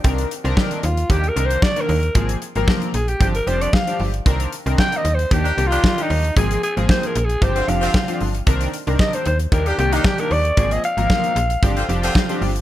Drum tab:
HH |xxxx-xxxxxxx-xox|xxxx-xxxxxxx-xox|xxxx-xxxxxxx-xox|xxxx-xxxxxxx-xox|
SD |----o-------o---|----o-------o---|----o-------o---|----o-------o---|
BD |o---o---o---o---|o---o---o---o---|o---o---o---o---|o---o---o---o---|

HH |xxxx-xxxxxxx-xox|xxxx-xxxxxxx-xox|
SD |----o-------o---|----o-------o---|
BD |o---o---o---o---|o---o---o---o---|